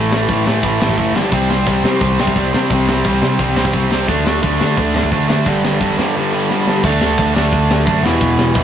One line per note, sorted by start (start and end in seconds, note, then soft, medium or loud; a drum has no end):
0.00 0.25 A1 medium
0.00 0.12 A2 loud
0.00 0.12 E3 loud
0.00 0.11 A3 loud
0.12 0.28 A2 medium
0.12 0.28 E3 medium
0.12 0.29 A3 medium
0.12 snare loud
0.29 0.45 A1 medium
0.29 0.47 A2 medium
0.29 0.46 E3 loud
0.29 0.46 A3 loud
0.29 kick loud
0.29 open hi-hat medium
0.45 0.61 A2 medium
0.45 0.62 A2 medium
0.45 0.63 E3 medium
0.45 0.63 A3 medium
0.45 snare loud
0.63 0.79 A1 medium
0.63 0.81 A2 medium
0.63 0.81 E3 medium
0.63 0.80 A3 medium
0.63 kick loud
0.63 open hi-hat medium
0.81 0.96 A1 medium
0.81 0.96 A2 medium
0.81 0.97 E3 medium
0.81 0.97 A3 medium
0.81 snare loud
0.89 kick medium
0.97 1.14 F#1 medium
0.97 1.14 A2 medium
0.97 1.14 E3 medium
0.97 1.14 A3 medium
0.97 kick medium
0.97 open hi-hat medium
1.14 1.30 G1 medium
1.14 1.31 G2 medium
1.14 1.31 D3 loud
1.14 1.32 G3 loud
1.14 snare loud
1.32 1.64 C2 medium
1.32 1.49 C3 loud
1.32 1.49 G3 loud
1.32 1.49 C4 loud
1.32 kick loud
1.32 crash loud
1.49 1.66 C3 medium
1.49 1.66 G3 medium
1.49 1.67 C4 loud
1.49 snare loud
1.66 1.83 C2 medium
1.66 1.84 C3 loud
1.66 1.84 G3 loud
1.66 1.83 C4 loud
1.66 kick loud
1.66 open hi-hat medium
1.84 2.00 C3 medium
1.84 2.00 G3 medium
1.84 2.01 C4 medium
1.84 snare loud
2.01 2.17 C2 medium
2.01 2.19 C3 medium
2.01 2.18 G3 medium
2.01 2.18 C4 medium
2.01 kick loud
2.01 open hi-hat medium
2.19 2.35 C2 medium
2.19 2.35 C3 medium
2.19 2.36 G3 medium
2.19 2.37 C4 loud
2.19 snare loud
2.27 kick medium
2.36 2.52 C2 medium
2.36 2.53 C3 medium
2.36 2.52 G3 medium
2.36 2.52 C4 loud
2.36 kick loud
2.36 open hi-hat medium
2.53 2.70 C3 medium
2.53 2.69 C3 medium
2.53 2.71 G3 medium
2.53 2.70 C4 loud
2.53 snare loud
2.70 3.02 C2 medium
2.70 2.88 C3 medium
2.70 2.88 G3 loud
2.70 2.87 C4 loud
2.70 kick loud
2.70 open hi-hat medium
2.88 3.04 C3 medium
2.88 3.05 G3 medium
2.88 3.05 C4 loud
2.88 snare loud
3.05 3.21 C2 medium
3.05 3.21 C3 medium
3.05 3.21 G3 loud
3.05 3.21 C4 loud
3.05 kick loud
3.05 open hi-hat medium
3.22 3.38 C3 medium
3.22 3.39 C3 medium
3.22 3.39 G3 medium
3.22 3.40 C4 medium
3.22 snare loud
3.39 3.55 C2 medium
3.39 3.56 C3 medium
3.39 3.56 G3 medium
3.39 3.56 C4 medium
3.39 kick loud
3.39 open hi-hat medium
3.57 3.73 C2 medium
3.57 3.72 C3 medium
3.57 3.72 G3 loud
3.57 3.73 C4 loud
3.57 snare loud
3.65 kick medium
3.73 3.90 C2 medium
3.73 3.91 C3 medium
3.73 3.90 G3 loud
3.73 3.90 C4 loud
3.73 kick medium
3.73 open hi-hat medium
3.91 4.07 C2 medium
3.91 4.07 C3 medium
3.91 4.07 G3 medium
3.91 4.07 C4 medium
3.91 snare loud
4.07 4.40 D2 loud
4.07 4.25 D3 loud
4.07 4.24 A3 loud
4.07 4.25 D4 loud
4.07 kick loud
4.07 open hi-hat medium
4.26 4.41 D3 medium
4.26 4.41 A3 medium
4.26 4.42 D4 medium
4.26 snare loud
4.42 4.59 D2 medium
4.42 4.59 D3 loud
4.42 4.58 A3 loud
4.42 4.58 D4 loud
4.42 kick loud
4.42 open hi-hat medium
4.59 4.75 D3 medium
4.59 4.76 D3 medium
4.59 4.76 A3 medium
4.59 4.77 D4 medium
4.59 snare loud
4.76 4.93 D2 medium
4.76 4.94 D3 medium
4.76 4.93 A3 medium
4.76 4.93 D4 medium
4.76 kick loud
4.76 open hi-hat medium
4.94 5.11 D2 medium
4.94 5.10 D3 medium
4.94 5.10 A3 medium
4.94 5.12 D4 loud
4.94 snare loud
5.03 kick medium
5.11 5.28 D2 medium
5.11 5.28 D3 medium
5.11 5.27 A3 medium
5.11 5.27 D4 loud
5.11 kick loud
5.11 open hi-hat medium
5.28 5.45 D3 medium
5.28 5.46 D3 medium
5.28 5.45 A3 medium
5.28 6.85 D4 medium
5.28 snare loud
5.46 5.78 G1 loud
5.46 5.63 G2 medium
5.46 5.63 D3 medium
5.46 5.62 G3 loud
5.46 kick loud
5.46 open hi-hat medium
5.63 5.79 G2 medium
5.63 5.79 D3 medium
5.63 5.80 G3 medium
5.63 snare loud
5.80 5.96 G1 medium
5.80 5.97 G2 loud
5.80 5.97 D3 medium
5.80 5.96 G3 loud
5.80 kick loud
5.80 open hi-hat medium
5.97 6.14 G2 medium
5.97 6.15 D3 medium
5.97 6.15 G3 medium
5.97 snare loud
6.15 6.32 G2 medium
6.15 6.32 D3 medium
6.15 6.31 G3 medium
6.32 6.48 G2 medium
6.32 6.49 D3 medium
6.32 6.49 G3 loud
6.49 6.67 G2 medium
6.49 6.66 D3 medium
6.49 6.66 G3 loud
6.49 snare medium
6.67 6.83 G2 medium
6.67 6.82 D3 medium
6.67 6.83 G3 loud
6.67 snare loud
6.83 7.00 D2 loud
6.83 7.34 D3 medium
6.83 7.34 A3 medium
6.83 7.33 D4 loud
6.83 kick loud
6.83 crash loud
7.01 7.18 D2 medium
7.01 snare loud
7.18 7.34 D2 medium
7.18 kick loud
7.18 ride medium
7.34 7.52 D2 medium
7.34 7.84 D3 medium
7.34 7.86 A3 medium
7.34 7.85 D4 medium
7.34 snare loud
7.53 7.84 D2 medium
7.53 kick loud
7.53 ride medium
7.71 snare loud
7.86 8.03 F#2 medium
7.86 8.02 D3 medium
7.86 8.03 A3 medium
7.86 8.04 D4 loud
7.86 kick loud
7.86 ride medium
8.02 8.19 E1 loud
8.02 8.54 E2 medium
8.02 8.54 B2 loud
8.02 8.57 E3 loud
8.02 snare loud
8.21 8.37 E1 loud
8.21 kick loud
8.21 ride medium
8.37 8.54 E1 medium
8.37 snare loud
8.55 8.63 E1 loud
8.55 8.63 E2 medium
8.55 8.63 B2 medium
8.55 8.63 E3 loud
8.55 kick loud
8.55 ride medium